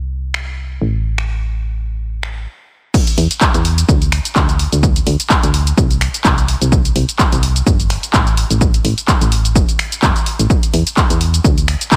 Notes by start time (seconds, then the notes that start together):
Already playing: C2
0.34 finger snap
0.81 A1
1.18 finger snap
2.23 finger snap
2.94 kick, crash, shaker
3.07 closed hi-hat, shaker
3.18 E2, open hi-hat
3.31 closed hi-hat, shaker
3.41 kick, clap, shaker
3.54 E2, closed hi-hat, shaker
3.65 open hi-hat
3.78 closed hi-hat, shaker
3.89 D2, kick, shaker
4.02 closed hi-hat, shaker
4.12 finger snap, open hi-hat
4.25 closed hi-hat, shaker
4.36 D2, kick, clap, shaker
4.49 closed hi-hat, shaker
4.59 open hi-hat
4.72 D2, closed hi-hat, shaker
4.83 kick, shaker
4.96 closed hi-hat, shaker
5.07 D2, open hi-hat
5.20 closed hi-hat, shaker
5.30 kick, clap, shaker
5.43 D2, closed hi-hat, shaker
5.54 open hi-hat
5.67 closed hi-hat, shaker
5.77 C2, kick, shaker
5.91 closed hi-hat, shaker
6.01 finger snap, open hi-hat
6.14 closed hi-hat, shaker
6.25 C2, kick, clap, shaker
6.38 closed hi-hat, shaker
6.48 open hi-hat
6.62 C2, closed hi-hat, shaker
6.72 kick, shaker
6.85 closed hi-hat, shaker
6.96 C2, open hi-hat
7.09 closed hi-hat, shaker
7.19 kick, clap, shaker
7.32 C2, closed hi-hat, shaker
7.43 open hi-hat
7.56 closed hi-hat, shaker
7.67 G1, kick, shaker
7.80 closed hi-hat, shaker
7.90 finger snap, open hi-hat
8.03 closed hi-hat, shaker
8.14 A1, kick, clap, shaker
8.27 closed hi-hat, shaker
8.37 open hi-hat
8.51 A1, closed hi-hat, shaker
8.61 kick, shaker
8.74 closed hi-hat, shaker
8.85 A1, open hi-hat
8.98 closed hi-hat, shaker
9.08 kick, clap, shaker
9.21 A1, closed hi-hat, shaker
9.32 open hi-hat
9.45 closed hi-hat, shaker
9.55 F#1, kick, shaker
9.69 closed hi-hat, shaker
9.79 finger snap, open hi-hat
9.92 closed hi-hat, shaker
10.03 F#1, kick, clap, shaker
10.16 closed hi-hat, shaker
10.26 open hi-hat
10.39 A1, closed hi-hat, shaker
10.50 kick, shaker
10.63 closed hi-hat, shaker
10.74 E2, open hi-hat
10.87 closed hi-hat, shaker
10.97 kick, clap, shaker
11.10 E2, closed hi-hat, shaker
11.21 open hi-hat
11.34 closed hi-hat, shaker
11.44 D2, kick, shaker
11.58 closed hi-hat, shaker
11.68 finger snap, open hi-hat
11.81 closed hi-hat, shaker
11.92 D2, kick, clap, shaker